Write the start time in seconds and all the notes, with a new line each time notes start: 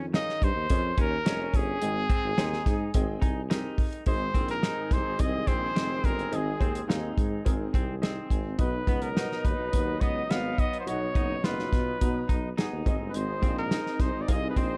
Already playing: F2 D#3
0.14 C#4 D#4 G#4 A#4 D#5 F5, snare, closed hi-hat
0.29 snare
0.42 G2 C5, kick, closed hi-hat
0.56 D#2
0.70 F2 C#4 G#4 A#4 D#5, kick, closed hi-hat
0.98 D#2 C#4 A#4, kick, closed hi-hat
1.26 F1 C#4 G#4 A#4 D#5, snare, closed hi-hat
1.53 G1 G#4, kick, closed hi-hat
1.82 G#1 G#2 C4 G#4 D#5 G5, closed hi-hat
2.10 C4, kick, closed hi-hat
2.25 G#1
2.38 D#2 C4 D#4 G#4 C5 G5, snare, closed hi-hat
2.53 snare
2.66 G#2, kick, snare, closed hi-hat
2.94 G#1 C4 G#4 D#5 G5, kick, closed hi-hat
3.22 C2 D#4 G#5, kick, closed hi-hat
3.50 C4 D#4 G4 G#4 A#4 D#5, snare, closed hi-hat
3.78 kick, open hi-hat
3.93 closed hi-hat
4.06 G#1 G#2 D#3 G#3 C4 D#4 G#4 C5 D#5, kick, closed hi-hat
4.34 A#1 C4 D#4 G#4 A#4, kick, closed hi-hat
4.48 A#4, closed hi-hat
4.62 C4 D#4 G#4 D#5, snare, closed hi-hat
4.91 C2 C5, kick, snare, closed hi-hat
5.06 G#1
5.18 C2 C4 D#4 G#4 D#5, kick, closed hi-hat
5.47 A#1 C4 C5, kick, closed hi-hat
5.75 F1 C4 D#4 G#4 D#5, snare, closed hi-hat
6.04 G1 A#4, kick, closed hi-hat
6.19 closed hi-hat
6.31 G#1 G#2 C4 D#4 G#4 D#5, closed hi-hat
6.36 G#4
6.60 D#2 C4 D#4 G#4 C5, kick, closed hi-hat
6.75 closed hi-hat
6.88 D#2 C4 D#4 G#4 F5, snare, closed hi-hat
7.17 G#2, kick, closed hi-hat
7.45 G#1 C4 D#4 G#4 A#4, kick, closed hi-hat
7.74 C2 C4, kick, closed hi-hat
8.02 C4 D#4 G#4 D#5, snare, closed hi-hat
8.30 G#1 G#5, kick, closed hi-hat
8.58 B1 B2 F#3 B3 D#4 F#4 B4 D#5, kick, closed hi-hat
8.86 C#2 B3 D#4 F#4 D#5, kick, closed hi-hat
9.02 A#4, closed hi-hat
9.16 B3 D#4 F#4 B4, snare, closed hi-hat
9.32 snare
9.45 D#2 B4, kick, closed hi-hat
9.59 B1
9.72 D#2 B3 D#4 F#4 B4, kick, closed hi-hat
10.01 C#2 B3 D#5, kick, closed hi-hat
10.29 G#1 B3 D#4 F#4 D#5 F5, snare, closed hi-hat
10.58 D#5, kick, closed hi-hat
10.73 closed hi-hat
10.80 C5
10.86 B1 B2 B3 D#4 F#4 C#5 D#5, closed hi-hat
11.15 F#1 B3 D#4 F#4 D#5, kick, closed hi-hat
11.44 F#1 F#3 B3 D#4 F4 B4 D#5, snare, closed hi-hat
11.59 snare
11.73 B2, kick, snare, closed hi-hat
12.01 B2 B3 D#4 F#4 A#5, kick, closed hi-hat
12.29 B1 D#4, kick, closed hi-hat
12.57 B3 D#4 F#4 G#4, snare, closed hi-hat
12.72 D#2
12.85 G#1 G#2 C4 D#4 G#4 D#5, kick, closed hi-hat
13.00 G1
13.09 B4
13.14 G#1 C5, closed hi-hat
13.43 A#1 C4 D#4 G#4 F5, kick, closed hi-hat
13.58 A#4
13.71 C4 D#4 G#4 D#5, snare, closed hi-hat
13.86 snare
13.99 C2 C5, kick, snare, closed hi-hat
14.14 G#1
14.22 D5
14.28 C2 C4 D#4 G#4 D#5 F5, kick, closed hi-hat
14.50 B4
14.56 A#1 C4 C5, kick, closed hi-hat